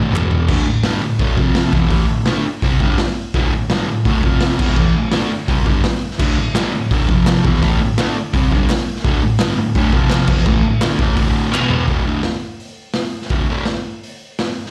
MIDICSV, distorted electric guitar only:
0, 0, Header, 1, 3, 480
1, 0, Start_track
1, 0, Key_signature, -1, "minor"
1, 0, Tempo, 356718
1, 667, Time_signature, 4, 2, 24, 8
1, 19787, End_track
2, 0, Start_track
2, 0, Title_t, "Distorted electric guitar"
2, 0, Program_c, 0, 30
2, 0, Note_on_c, 0, 38, 95
2, 0, Note_on_c, 0, 45, 102
2, 0, Note_on_c, 0, 50, 98
2, 158, Note_off_c, 0, 38, 0
2, 163, Note_on_c, 0, 40, 100
2, 179, Note_off_c, 0, 45, 0
2, 182, Note_off_c, 0, 50, 0
2, 184, Note_on_c, 0, 47, 103
2, 187, Note_on_c, 0, 52, 111
2, 648, Note_off_c, 0, 40, 0
2, 658, Note_off_c, 0, 47, 0
2, 660, Note_off_c, 0, 52, 0
2, 660, Note_on_c, 0, 38, 89
2, 673, Note_on_c, 0, 45, 106
2, 684, Note_on_c, 0, 50, 109
2, 892, Note_off_c, 0, 45, 0
2, 896, Note_off_c, 0, 38, 0
2, 908, Note_off_c, 0, 50, 0
2, 908, Note_on_c, 0, 45, 64
2, 913, Note_on_c, 0, 38, 54
2, 1099, Note_off_c, 0, 45, 0
2, 1102, Note_off_c, 0, 38, 0
2, 1133, Note_on_c, 0, 43, 84
2, 1140, Note_on_c, 0, 50, 86
2, 1155, Note_on_c, 0, 55, 100
2, 1365, Note_off_c, 0, 43, 0
2, 1370, Note_on_c, 0, 38, 66
2, 1374, Note_off_c, 0, 50, 0
2, 1379, Note_on_c, 0, 45, 68
2, 1383, Note_off_c, 0, 55, 0
2, 1570, Note_off_c, 0, 38, 0
2, 1575, Note_off_c, 0, 45, 0
2, 1600, Note_on_c, 0, 38, 87
2, 1616, Note_on_c, 0, 45, 94
2, 1629, Note_on_c, 0, 50, 89
2, 1838, Note_off_c, 0, 38, 0
2, 1843, Note_on_c, 0, 41, 89
2, 1852, Note_off_c, 0, 45, 0
2, 1856, Note_off_c, 0, 50, 0
2, 1857, Note_on_c, 0, 48, 89
2, 1861, Note_on_c, 0, 53, 106
2, 2318, Note_off_c, 0, 41, 0
2, 2323, Note_on_c, 0, 40, 86
2, 2332, Note_off_c, 0, 48, 0
2, 2336, Note_off_c, 0, 53, 0
2, 2337, Note_on_c, 0, 47, 95
2, 2348, Note_on_c, 0, 52, 102
2, 2543, Note_off_c, 0, 40, 0
2, 2549, Note_on_c, 0, 45, 103
2, 2554, Note_off_c, 0, 52, 0
2, 2565, Note_off_c, 0, 47, 0
2, 2571, Note_on_c, 0, 52, 94
2, 2582, Note_on_c, 0, 57, 107
2, 2785, Note_off_c, 0, 45, 0
2, 2796, Note_off_c, 0, 52, 0
2, 2796, Note_on_c, 0, 38, 59
2, 2802, Note_on_c, 0, 45, 66
2, 2816, Note_off_c, 0, 57, 0
2, 3002, Note_off_c, 0, 38, 0
2, 3005, Note_off_c, 0, 45, 0
2, 3040, Note_on_c, 0, 50, 89
2, 3061, Note_on_c, 0, 57, 104
2, 3068, Note_on_c, 0, 62, 100
2, 3285, Note_off_c, 0, 50, 0
2, 3296, Note_off_c, 0, 57, 0
2, 3299, Note_off_c, 0, 62, 0
2, 3538, Note_on_c, 0, 48, 89
2, 3549, Note_on_c, 0, 55, 96
2, 3553, Note_on_c, 0, 60, 100
2, 3772, Note_off_c, 0, 48, 0
2, 3777, Note_on_c, 0, 43, 91
2, 3779, Note_off_c, 0, 55, 0
2, 3782, Note_off_c, 0, 60, 0
2, 3794, Note_on_c, 0, 50, 95
2, 3808, Note_on_c, 0, 55, 96
2, 4014, Note_off_c, 0, 43, 0
2, 4022, Note_off_c, 0, 50, 0
2, 4029, Note_off_c, 0, 55, 0
2, 4504, Note_on_c, 0, 38, 101
2, 4519, Note_on_c, 0, 45, 108
2, 4527, Note_on_c, 0, 50, 105
2, 4737, Note_off_c, 0, 38, 0
2, 4738, Note_off_c, 0, 45, 0
2, 4748, Note_off_c, 0, 50, 0
2, 4750, Note_on_c, 0, 38, 59
2, 4754, Note_on_c, 0, 45, 65
2, 4939, Note_off_c, 0, 38, 0
2, 4941, Note_off_c, 0, 45, 0
2, 4985, Note_on_c, 0, 43, 102
2, 4999, Note_on_c, 0, 50, 86
2, 5014, Note_on_c, 0, 55, 105
2, 5217, Note_off_c, 0, 43, 0
2, 5224, Note_off_c, 0, 50, 0
2, 5228, Note_on_c, 0, 38, 69
2, 5232, Note_off_c, 0, 55, 0
2, 5239, Note_on_c, 0, 45, 79
2, 5418, Note_off_c, 0, 38, 0
2, 5423, Note_off_c, 0, 45, 0
2, 5462, Note_on_c, 0, 38, 99
2, 5474, Note_on_c, 0, 45, 93
2, 5487, Note_on_c, 0, 50, 104
2, 5696, Note_off_c, 0, 38, 0
2, 5701, Note_on_c, 0, 41, 99
2, 5702, Note_off_c, 0, 45, 0
2, 5708, Note_off_c, 0, 50, 0
2, 5714, Note_on_c, 0, 48, 100
2, 5727, Note_on_c, 0, 53, 101
2, 6166, Note_off_c, 0, 41, 0
2, 6172, Note_on_c, 0, 40, 81
2, 6182, Note_off_c, 0, 48, 0
2, 6188, Note_off_c, 0, 53, 0
2, 6198, Note_on_c, 0, 47, 90
2, 6206, Note_on_c, 0, 52, 102
2, 6410, Note_off_c, 0, 40, 0
2, 6416, Note_off_c, 0, 52, 0
2, 6423, Note_off_c, 0, 47, 0
2, 6424, Note_on_c, 0, 45, 103
2, 6432, Note_on_c, 0, 52, 114
2, 6452, Note_on_c, 0, 57, 107
2, 6657, Note_off_c, 0, 45, 0
2, 6661, Note_off_c, 0, 52, 0
2, 6671, Note_off_c, 0, 57, 0
2, 6685, Note_on_c, 0, 38, 68
2, 6690, Note_on_c, 0, 45, 70
2, 6866, Note_off_c, 0, 38, 0
2, 6869, Note_off_c, 0, 45, 0
2, 6901, Note_on_c, 0, 50, 80
2, 6916, Note_on_c, 0, 57, 100
2, 6920, Note_on_c, 0, 62, 100
2, 7135, Note_off_c, 0, 50, 0
2, 7142, Note_off_c, 0, 57, 0
2, 7144, Note_off_c, 0, 62, 0
2, 7370, Note_on_c, 0, 48, 85
2, 7385, Note_on_c, 0, 55, 97
2, 7396, Note_on_c, 0, 60, 103
2, 7591, Note_off_c, 0, 48, 0
2, 7596, Note_on_c, 0, 43, 90
2, 7609, Note_off_c, 0, 55, 0
2, 7617, Note_on_c, 0, 50, 92
2, 7620, Note_off_c, 0, 60, 0
2, 7625, Note_on_c, 0, 55, 84
2, 7842, Note_off_c, 0, 43, 0
2, 7853, Note_off_c, 0, 50, 0
2, 7856, Note_off_c, 0, 55, 0
2, 8320, Note_on_c, 0, 38, 105
2, 8336, Note_on_c, 0, 45, 108
2, 8350, Note_on_c, 0, 50, 109
2, 8563, Note_off_c, 0, 38, 0
2, 8567, Note_off_c, 0, 45, 0
2, 8578, Note_off_c, 0, 50, 0
2, 8580, Note_on_c, 0, 38, 61
2, 8583, Note_on_c, 0, 45, 73
2, 8773, Note_off_c, 0, 38, 0
2, 8774, Note_off_c, 0, 45, 0
2, 8800, Note_on_c, 0, 43, 95
2, 8817, Note_on_c, 0, 50, 96
2, 8824, Note_on_c, 0, 55, 98
2, 9043, Note_off_c, 0, 43, 0
2, 9051, Note_off_c, 0, 50, 0
2, 9055, Note_off_c, 0, 55, 0
2, 9065, Note_on_c, 0, 38, 70
2, 9069, Note_on_c, 0, 45, 75
2, 9254, Note_off_c, 0, 38, 0
2, 9257, Note_off_c, 0, 45, 0
2, 9294, Note_on_c, 0, 38, 100
2, 9311, Note_on_c, 0, 45, 94
2, 9325, Note_on_c, 0, 50, 97
2, 9518, Note_off_c, 0, 38, 0
2, 9523, Note_on_c, 0, 41, 99
2, 9536, Note_off_c, 0, 45, 0
2, 9541, Note_on_c, 0, 48, 97
2, 9545, Note_off_c, 0, 50, 0
2, 9553, Note_on_c, 0, 53, 95
2, 10003, Note_off_c, 0, 41, 0
2, 10009, Note_on_c, 0, 40, 87
2, 10012, Note_off_c, 0, 48, 0
2, 10018, Note_off_c, 0, 53, 0
2, 10023, Note_on_c, 0, 47, 92
2, 10036, Note_on_c, 0, 52, 93
2, 10243, Note_off_c, 0, 40, 0
2, 10248, Note_on_c, 0, 45, 97
2, 10249, Note_off_c, 0, 52, 0
2, 10253, Note_off_c, 0, 47, 0
2, 10265, Note_on_c, 0, 52, 93
2, 10274, Note_on_c, 0, 57, 100
2, 10485, Note_off_c, 0, 45, 0
2, 10494, Note_off_c, 0, 52, 0
2, 10499, Note_off_c, 0, 57, 0
2, 10513, Note_on_c, 0, 38, 61
2, 10514, Note_on_c, 0, 45, 75
2, 10697, Note_off_c, 0, 38, 0
2, 10698, Note_off_c, 0, 45, 0
2, 10736, Note_on_c, 0, 50, 107
2, 10751, Note_on_c, 0, 57, 105
2, 10757, Note_on_c, 0, 62, 100
2, 10969, Note_off_c, 0, 50, 0
2, 10976, Note_off_c, 0, 57, 0
2, 10979, Note_off_c, 0, 62, 0
2, 11212, Note_on_c, 0, 48, 99
2, 11222, Note_on_c, 0, 55, 88
2, 11236, Note_on_c, 0, 60, 97
2, 11446, Note_off_c, 0, 48, 0
2, 11451, Note_off_c, 0, 55, 0
2, 11458, Note_off_c, 0, 60, 0
2, 11467, Note_on_c, 0, 43, 90
2, 11477, Note_on_c, 0, 50, 93
2, 11489, Note_on_c, 0, 55, 95
2, 11693, Note_off_c, 0, 43, 0
2, 11698, Note_off_c, 0, 50, 0
2, 11704, Note_off_c, 0, 55, 0
2, 12167, Note_on_c, 0, 38, 105
2, 12178, Note_on_c, 0, 45, 111
2, 12197, Note_on_c, 0, 50, 114
2, 12396, Note_off_c, 0, 38, 0
2, 12408, Note_off_c, 0, 45, 0
2, 12412, Note_on_c, 0, 38, 66
2, 12417, Note_off_c, 0, 50, 0
2, 12426, Note_on_c, 0, 45, 79
2, 12603, Note_off_c, 0, 38, 0
2, 12610, Note_off_c, 0, 45, 0
2, 12641, Note_on_c, 0, 43, 96
2, 12657, Note_on_c, 0, 50, 94
2, 12663, Note_on_c, 0, 55, 113
2, 12878, Note_off_c, 0, 43, 0
2, 12886, Note_off_c, 0, 50, 0
2, 12889, Note_off_c, 0, 55, 0
2, 12900, Note_on_c, 0, 38, 68
2, 12906, Note_on_c, 0, 45, 68
2, 13087, Note_off_c, 0, 38, 0
2, 13090, Note_off_c, 0, 45, 0
2, 13129, Note_on_c, 0, 38, 85
2, 13134, Note_on_c, 0, 45, 92
2, 13152, Note_on_c, 0, 50, 99
2, 13357, Note_off_c, 0, 38, 0
2, 13363, Note_on_c, 0, 41, 92
2, 13364, Note_off_c, 0, 45, 0
2, 13373, Note_off_c, 0, 50, 0
2, 13375, Note_on_c, 0, 48, 94
2, 13389, Note_on_c, 0, 53, 104
2, 13828, Note_off_c, 0, 41, 0
2, 13833, Note_on_c, 0, 40, 95
2, 13844, Note_off_c, 0, 48, 0
2, 13850, Note_off_c, 0, 53, 0
2, 13850, Note_on_c, 0, 47, 86
2, 13857, Note_on_c, 0, 52, 108
2, 14070, Note_off_c, 0, 40, 0
2, 14076, Note_on_c, 0, 45, 109
2, 14081, Note_off_c, 0, 47, 0
2, 14085, Note_off_c, 0, 52, 0
2, 14099, Note_on_c, 0, 52, 99
2, 14107, Note_on_c, 0, 57, 120
2, 14303, Note_off_c, 0, 45, 0
2, 14314, Note_off_c, 0, 52, 0
2, 14319, Note_on_c, 0, 38, 60
2, 14319, Note_on_c, 0, 45, 72
2, 14329, Note_off_c, 0, 57, 0
2, 14514, Note_off_c, 0, 38, 0
2, 14514, Note_off_c, 0, 45, 0
2, 14545, Note_on_c, 0, 50, 105
2, 14568, Note_on_c, 0, 57, 98
2, 14577, Note_on_c, 0, 62, 92
2, 14788, Note_off_c, 0, 50, 0
2, 14793, Note_on_c, 0, 45, 96
2, 14799, Note_off_c, 0, 57, 0
2, 14802, Note_on_c, 0, 52, 99
2, 14804, Note_off_c, 0, 62, 0
2, 14818, Note_on_c, 0, 57, 108
2, 15014, Note_off_c, 0, 45, 0
2, 15020, Note_on_c, 0, 38, 95
2, 15031, Note_off_c, 0, 52, 0
2, 15036, Note_on_c, 0, 45, 109
2, 15040, Note_off_c, 0, 57, 0
2, 15046, Note_on_c, 0, 50, 87
2, 15491, Note_off_c, 0, 38, 0
2, 15491, Note_on_c, 0, 40, 98
2, 15509, Note_off_c, 0, 45, 0
2, 15509, Note_on_c, 0, 47, 98
2, 15519, Note_off_c, 0, 50, 0
2, 15519, Note_on_c, 0, 52, 107
2, 15973, Note_off_c, 0, 40, 0
2, 15979, Note_on_c, 0, 38, 88
2, 15991, Note_off_c, 0, 47, 0
2, 15996, Note_off_c, 0, 52, 0
2, 16000, Note_on_c, 0, 45, 85
2, 16012, Note_on_c, 0, 50, 80
2, 16185, Note_off_c, 0, 38, 0
2, 16196, Note_off_c, 0, 45, 0
2, 16202, Note_off_c, 0, 50, 0
2, 16219, Note_on_c, 0, 38, 91
2, 16232, Note_on_c, 0, 45, 78
2, 16240, Note_on_c, 0, 50, 90
2, 16425, Note_off_c, 0, 38, 0
2, 16432, Note_off_c, 0, 45, 0
2, 16436, Note_off_c, 0, 50, 0
2, 17899, Note_on_c, 0, 38, 84
2, 17915, Note_on_c, 0, 45, 90
2, 17919, Note_on_c, 0, 50, 95
2, 18110, Note_off_c, 0, 38, 0
2, 18118, Note_off_c, 0, 45, 0
2, 18120, Note_off_c, 0, 50, 0
2, 18157, Note_on_c, 0, 38, 94
2, 18170, Note_on_c, 0, 45, 81
2, 18181, Note_on_c, 0, 50, 91
2, 18360, Note_off_c, 0, 38, 0
2, 18366, Note_off_c, 0, 45, 0
2, 18372, Note_off_c, 0, 50, 0
2, 19787, End_track
3, 0, Start_track
3, 0, Title_t, "Muted distorted electric guitar strokes"
3, 3290, Note_on_c, 9, 29, 65
3, 3425, Note_off_c, 9, 29, 0
3, 7155, Note_on_c, 9, 29, 61
3, 7289, Note_off_c, 9, 29, 0
3, 10994, Note_on_c, 9, 29, 66
3, 11129, Note_off_c, 9, 29, 0
3, 19787, End_track
0, 0, End_of_file